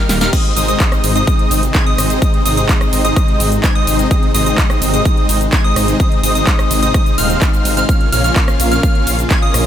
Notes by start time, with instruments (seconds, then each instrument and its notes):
Already playing: analog synth pad D#3 A#3 G4, supersaw synth G3 A#3 D#4 A#4 F5, digital synth lead F6
0.09 detuned saw bass D#1, snare, open hi-hat, ride, shaker
0.21 supersaw synth G3 A#3 D#4 A#4 F5, digital synth lead F6, snare, closed hi-hat, shaker
0.33 analog synth pad C3 G#3 D#4, supersaw synth C4 D#4, digital synth lead D#6, kick, closed hi-hat, crash, shaker
0.45 closed hi-hat
0.57 detuned saw bass G#1, supersaw synth G#3 C4 D#4 C5 D#5, digital synth lead D#6, open hi-hat, ride, shaker
0.68 supersaw synth G#3 C4 D#4 C5 D#5, digital synth lead D#6, closed hi-hat, shaker
0.80 kick, clap, closed hi-hat, shaker
0.92 cross-stick, closed hi-hat, shaker
1.04 detuned saw bass G#1, open hi-hat, ride, shaker
1.16 supersaw synth G#3 C4 D#4 C5 D#5, digital synth lead D#6, closed hi-hat, shaker
1.27 supersaw synth G#3 C4 D#4 C5 D#5, digital synth lead D#6, kick, closed hi-hat, shaker
1.39 closed hi-hat
1.51 detuned saw bass G#1, open hi-hat, ride, shaker
1.63 closed hi-hat, shaker
1.75 supersaw synth G#3 C4 D#4 C5 G#5, digital synth lead G#6, kick, clap, closed hi-hat, shaker
1.86 supersaw synth G#3 C4 D#4 C5 D#5, digital synth lead D#6, closed hi-hat
1.98 detuned saw bass G#1, cross-stick, open hi-hat, ride, shaker
2.10 closed hi-hat, shaker
2.22 supersaw synth G#3 C4 D#4 C5 D#5, digital synth lead D#6, kick, closed hi-hat, shaker
2.34 closed hi-hat
2.45 detuned saw bass G#1, supersaw synth G#3 C4 D#4 C5 D#5, digital synth lead D#6, open hi-hat, ride, shaker
2.57 supersaw synth G#3 C4 D#4 C5 D#5, digital synth lead D#6, closed hi-hat, shaker
2.69 kick, clap, closed hi-hat, shaker
2.81 cross-stick, closed hi-hat, shaker
2.93 detuned saw bass G#1, open hi-hat, ride, shaker
3.05 supersaw synth G#3 C4 D#4 C5 D#5, digital synth lead D#6, closed hi-hat, shaker
3.16 digital synth lead D#6, kick, cross-stick, closed hi-hat, shaker
3.28 closed hi-hat
3.40 detuned saw bass G#1, open hi-hat, ride, shaker
3.52 closed hi-hat, shaker
3.64 supersaw synth G#3 C4 D#4 C5 G#5, digital synth lead G#6, kick, clap, closed hi-hat, shaker
3.75 supersaw synth G#3 C4 D#4 C5 D#5, digital synth lead D#6, closed hi-hat
3.87 detuned saw bass G#1, open hi-hat, ride, shaker
3.99 closed hi-hat, shaker
4.11 supersaw synth G#3 C4 D#4 D#5, digital synth lead D#6, kick, closed hi-hat, shaker
4.23 closed hi-hat
4.34 detuned saw bass G#1, supersaw synth G#3 C4 D#4 C5 D#5, digital synth lead D#6, open hi-hat, ride, shaker
4.46 supersaw synth G#3 C4 D#4 C5 D#5, digital synth lead D#6, closed hi-hat, shaker
4.58 kick, clap, closed hi-hat, shaker
4.70 cross-stick, closed hi-hat, shaker
4.82 detuned saw bass G#1, open hi-hat, ride, shaker
4.94 supersaw synth G#3 C4 D#4 C5 D#5, digital synth lead D#6, closed hi-hat, shaker
5.05 supersaw synth G#3 C4 D#4 C5 D#5, digital synth lead D#6, kick, closed hi-hat, shaker
5.17 closed hi-hat
5.29 detuned saw bass G#1, open hi-hat, ride, shaker
5.41 closed hi-hat, shaker
5.53 supersaw synth G#3 C4 D#4 C5 G#5, digital synth lead G#6, kick, clap, closed hi-hat, shaker
5.64 supersaw synth G#3 C4 D#4 C5 D#5, digital synth lead D#6, closed hi-hat
5.76 detuned saw bass G#1, cross-stick, open hi-hat, ride, shaker
5.88 closed hi-hat, shaker
6.00 digital synth lead D#6, kick, closed hi-hat, shaker
6.12 closed hi-hat
6.23 detuned saw bass G#1, supersaw synth G#3 C4 D#4 C5 D#5, digital synth lead D#6, open hi-hat, ride, shaker
6.35 supersaw synth G#3 C4 D#4 C5 D#5, digital synth lead D#6, closed hi-hat, shaker
6.47 kick, clap, closed hi-hat, shaker
6.59 cross-stick, closed hi-hat, shaker
6.71 detuned saw bass G#1, open hi-hat, ride, shaker
6.83 supersaw synth G#3 C4 D#4 C5 D#5, digital synth lead D#6, closed hi-hat, shaker
6.94 supersaw synth C4 C5, digital synth lead D#6, kick, cross-stick, closed hi-hat, shaker
7.06 closed hi-hat, shaker
7.18 detuned saw bass D#1, supersaw synth G#3 C4 D#4 C5 F5, digital synth lead F6, open hi-hat, ride, shaker
7.30 closed hi-hat, shaker
7.42 kick, clap, closed hi-hat, shaker
7.53 closed hi-hat, shaker
7.65 detuned saw bass G#1, open hi-hat, ride, shaker
7.77 supersaw synth G#3 C4 D#4 C5 F5, digital synth lead F6, closed hi-hat, shaker
7.89 analog synth pad C#3 A#3 F4, supersaw synth A#3 C#4 F4 C#5 F5, digital synth lead F6, kick, closed hi-hat, shaker
8.01 closed hi-hat
8.12 detuned saw bass A#1, supersaw synth A#3 C#4 F4 C#5 F5, digital synth lead F6, open hi-hat, ride, shaker
8.24 supersaw synth A#3 C#4 F4 C#5 F5, digital synth lead F6, closed hi-hat, shaker
8.36 kick, clap, closed hi-hat, shaker
8.48 cross-stick, closed hi-hat, shaker
8.60 detuned saw bass A#1, open hi-hat, ride, shaker
8.71 supersaw synth A#3 C#4 F4 C#5 F5, digital synth lead F6, closed hi-hat, shaker
8.83 digital synth lead F6, kick, closed hi-hat, shaker
8.95 closed hi-hat
9.07 detuned saw bass A#1, open hi-hat, ride, shaker
9.19 closed hi-hat, shaker
9.30 supersaw synth A#3 C#4 F4 C#5 G#5, digital synth lead G#6, kick, clap, closed hi-hat, shaker
9.42 supersaw synth A#3 C#4 F4 C#5 D#5, digital synth lead D#6, closed hi-hat
9.54 detuned saw bass A#1, cross-stick, open hi-hat, ride, shaker